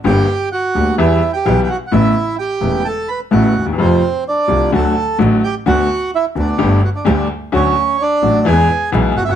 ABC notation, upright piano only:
X:1
M:4/4
L:1/16
Q:1/4=128
K:D
V:1 name="Upright piano" clef=bass
[G,,,G,,D,G,_B,G]2 z4 [D,,D,G,B,G]2 [E,,E,G,=B,G]2 z2 [B,,,B,,E,G,B,G]2 z2 | [A,,,A,,C,A,B,E]2 z4 [E,,,E,,C,A,B,E]2 z4 [A,,,A,,C,A,B,E]2 z/2 D,,/2 _E,,/2 =E,,/2 | [=F,,=C,=F,A,=F]2 z4 [=C,,C,F,A,F]2 [D,,D,^F,A,^F]2 z2 [A,,,A,,D,F,A,F]2 z2 | [D,,D,A,B,F]2 z4 [D,,D,A,B,F]2 [G,,,G,,D,G,A,G]2 z2 [D,,D,G,A,G]2 z2 |
[D,,D,F,A,F]2 z4 [A,,,A,,D,F,A,F]2 [E,,E,^G,B,^G]2 z2 [B,,,B,,E,G,B,G]2 z/2 F,,,/2 =G,,,/2 z/2 |]